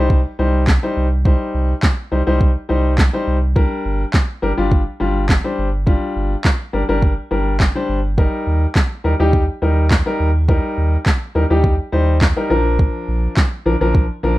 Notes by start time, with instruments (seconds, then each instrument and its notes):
Already playing: sub bass C2, grand piano G3 D#4 C5
0.10 kick
0.39 sub bass C2, grand piano G3 D#4 C5
0.67 kick, snare, clap
0.83 grand piano G3 D#4 C5
0.97 sub bass C2
1.25 grand piano G3 D#4 C5, kick
1.54 sub bass C2
1.83 kick, snare, clap
2.12 sub bass C2, grand piano G3 D#4 C5
2.27 sub bass C2, grand piano G3 D#4 C5
2.41 kick
2.69 sub bass C2, grand piano G3 D#4 C5
2.98 kick, snare, clap
3.13 grand piano G3 D#4 C5
3.27 sub bass C2
3.56 grand piano G3 D4 A#4, kick
3.85 sub bass G1
4.14 kick, snare, clap
4.42 sub bass G1, grand piano G3 D4 A#4
4.57 sub bass G1, grand piano G3 D4 F4
4.71 kick
5.00 sub bass G1, grand piano G3 D4 F4
5.29 kick, snare, clap
5.44 grand piano G3 D4 C5
5.58 sub bass G1
5.86 grand piano G3 D4 F4, kick
6.16 sub bass G1
6.45 kick, snare, clap
6.73 sub bass G1, grand piano G3 D4 A#4
6.89 sub bass G1, grand piano G3 D4 A#4
7.02 kick
7.31 sub bass G1, grand piano G3 D4 A#4
7.60 kick, snare, clap
7.75 grand piano G3 D4 C5
7.89 sub bass G1
8.18 grand piano G3 D#4 A#4, kick
8.47 sub bass D#2
8.76 kick, snare, clap
9.04 sub bass D#2, grand piano G3 D#4 A#4
9.20 sub bass D#2, grand piano G3 D#4 G4
9.33 kick
9.62 sub bass D#2, grand piano G3 D#4 A#4
9.91 kick, snare, clap
10.06 grand piano G3 D#4 A#4
10.20 sub bass D#2
10.48 grand piano G3 D#4 A#4, kick
10.77 sub bass D#2
11.06 kick, snare, clap
11.35 sub bass D#2, grand piano G3 D#4 A#4
11.50 sub bass D#2, grand piano G3 D#4 G4
11.64 kick
11.92 sub bass D#2, grand piano G3 D#4 C5
12.21 kick, snare, clap
12.36 grand piano G3 D#4 A#4
12.50 sub bass A#1, grand piano F3 D4 A#4
12.79 kick
13.08 sub bass A#1
13.37 kick, snare, clap
13.66 sub bass A#1, grand piano F3 D4 A#4
13.81 sub bass A#1, grand piano F3 D4 A#4
13.95 kick
14.23 sub bass A#1, grand piano F3 D4 A#4